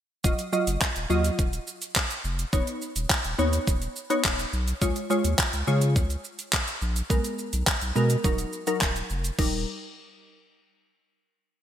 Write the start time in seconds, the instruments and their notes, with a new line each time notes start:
0.24 sub bass D#1, synth pluck F#3 F4 D#5, kick, shaker
0.39 closed hi-hat, shaker
0.53 synth pluck F#3 F4 D#5, shaker
0.67 sub bass F#1, closed hi-hat, shaker
0.81 kick, clap, shaker
0.96 sub bass D#1, closed hi-hat, shaker
1.10 sub bass D#2, synth pluck F#3 F4 D#5, shaker
1.24 closed hi-hat, shaker
1.39 sub bass D#1, kick, shaker
1.53 closed hi-hat, shaker
1.67 shaker
1.82 closed hi-hat, shaker
1.96 kick, clap, shaker
2.10 closed hi-hat, shaker
2.24 sub bass F1, shaker
2.39 closed hi-hat, shaker
2.53 sub bass D#1, synth pluck B3 D#4 C#5, kick, shaker
2.67 closed hi-hat, shaker
2.82 shaker
2.96 sub bass D#1, closed hi-hat, shaker
3.10 kick, clap, shaker
3.24 sub bass D#1, closed hi-hat, shaker
3.39 sub bass D#2, synth pluck B3 D#4 C#5, shaker
3.53 closed hi-hat, shaker
3.67 sub bass D#1, kick, shaker
3.82 closed hi-hat, shaker
3.96 shaker
4.10 synth pluck B3 D#4 C#5, closed hi-hat, shaker
4.25 sub bass D#1, kick, clap, shaker
4.39 closed hi-hat, shaker
4.53 sub bass B1, shaker
4.68 closed hi-hat, shaker
4.81 sub bass C#2, synth pluck G#3 F4 C#5, kick, shaker
4.96 closed hi-hat, shaker
5.10 synth pluck G#3 F4 C#5, shaker
5.24 sub bass D#2, closed hi-hat, shaker
5.39 kick, clap, shaker
5.53 sub bass C#2, closed hi-hat, shaker
5.67 sub bass C#3, synth pluck G#3 F4 C#5, shaker
5.81 closed hi-hat, shaker
5.96 sub bass C#2, kick, shaker
6.10 closed hi-hat, shaker
6.25 shaker
6.39 closed hi-hat, shaker
6.53 kick, clap, shaker
6.68 closed hi-hat, shaker
6.81 sub bass A#1, shaker
6.96 closed hi-hat, shaker
7.10 sub bass B1, synth pluck G#3 B3 A#4, kick, shaker
7.24 closed hi-hat, shaker
7.39 shaker
7.53 sub bass B1, closed hi-hat, shaker
7.67 kick, clap, shaker
7.81 sub bass B1, closed hi-hat, shaker
7.96 sub bass B2, synth pluck G#3 B3 A#4, shaker
8.10 closed hi-hat, shaker
8.24 sub bass D#1, synth pluck F#3 D#4 A#4, kick, shaker
8.38 closed hi-hat, shaker
8.53 shaker
8.67 synth pluck F#3 D#4 A#4, closed hi-hat, shaker
8.81 sub bass D#1, kick, clap, shaker
8.96 closed hi-hat, shaker
9.10 sub bass F1, shaker
9.24 closed hi-hat, shaker
9.39 sub bass D#1, synth pluck G3 D#4 A#4, kick, crash